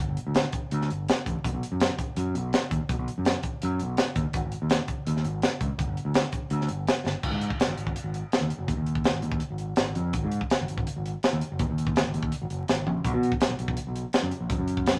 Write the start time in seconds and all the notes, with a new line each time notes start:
0.09 G1
0.17 closed hi-hat
0.27 D2
0.35 snare, closed hi-hat
0.52 kick, closed hi-hat
0.71 D2, closed hi-hat
0.82 snare
0.90 G1, closed hi-hat
1.08 snare, closed hi-hat
1.26 A1, kick, closed hi-hat
1.45 B1, kick, closed hi-hat
1.53 B1
1.63 closed hi-hat
1.72 F#2
1.80 snare, closed hi-hat
1.99 kick, closed hi-hat
2.16 F#2, closed hi-hat
2.35 B1, closed hi-hat
2.53 snare, closed hi-hat
2.71 D#2, kick, closed hi-hat
2.89 B1, kick, closed hi-hat
2.99 B1
3.08 closed hi-hat
3.18 F#2
3.25 snare, closed hi-hat
3.43 kick, closed hi-hat
3.62 F#2, closed hi-hat
3.79 B1, closed hi-hat
3.97 snare, closed hi-hat
4.16 D#2, kick, closed hi-hat
4.33 G#1, kick, closed hi-hat
4.45 G#1
4.52 closed hi-hat
4.62 D#2
4.70 snare, closed hi-hat
4.88 kick, closed hi-hat
5.07 D#2, closed hi-hat
5.17 snare
5.25 G#1, closed hi-hat
5.42 snare, closed hi-hat
5.61 C#2, kick, closed hi-hat
5.78 G1, kick, closed hi-hat
5.88 G1
5.97 closed hi-hat
6.05 D2
6.14 snare, closed hi-hat
6.32 kick, closed hi-hat
6.50 D2, closed hi-hat
6.61 snare
6.69 G1, closed hi-hat
6.87 snare, closed hi-hat
7.05 G1, snare
7.23 G#1, kick, crash
7.31 G#2
7.41 closed hi-hat
7.50 kick
7.60 snare, closed hi-hat
7.68 G#1
7.77 G#1, closed hi-hat
7.87 kick
7.96 closed hi-hat
8.04 G#1
8.14 closed hi-hat
8.32 snare, closed hi-hat
8.41 D#2
8.50 closed hi-hat
8.59 F#1
8.68 D#2, kick, closed hi-hat
8.77 D#2
8.87 closed hi-hat
8.95 kick
9.04 snare, closed hi-hat
9.14 G#1
9.22 D#2, closed hi-hat
9.32 kick
9.40 closed hi-hat
9.50 G#1
9.58 closed hi-hat
9.76 G#1, snare, closed hi-hat
9.95 F2, closed hi-hat
10.13 G#1, kick, closed hi-hat
10.24 G#2
10.32 closed hi-hat
10.41 kick
10.50 snare, closed hi-hat
10.61 G#1
10.68 G#1, closed hi-hat
10.78 kick
10.87 closed hi-hat
10.96 G#1
11.06 closed hi-hat
11.23 snare, closed hi-hat
11.33 D#2
11.41 closed hi-hat
11.52 F#1
11.59 D#2, kick, closed hi-hat
11.70 D#2
11.78 closed hi-hat
11.87 kick
11.96 snare, closed hi-hat
12.06 G#1
12.14 D#2, closed hi-hat
12.23 kick
12.32 closed hi-hat
12.42 G#1
12.50 F#1, closed hi-hat
12.68 G#1, snare, closed hi-hat
12.86 A#1, high tom
13.04 B1, kick, closed hi-hat
13.13 B2
13.23 closed hi-hat
13.32 kick
13.40 snare, closed hi-hat
13.49 B1
13.58 B1, closed hi-hat
13.68 kick
13.77 closed hi-hat
13.87 B1
13.96 closed hi-hat
14.13 snare, closed hi-hat
14.23 F#2
14.31 closed hi-hat
14.41 A#1
14.50 F#2, kick, closed hi-hat
14.58 F#2
14.68 closed hi-hat
14.77 kick
14.86 snare, closed hi-hat
14.95 B1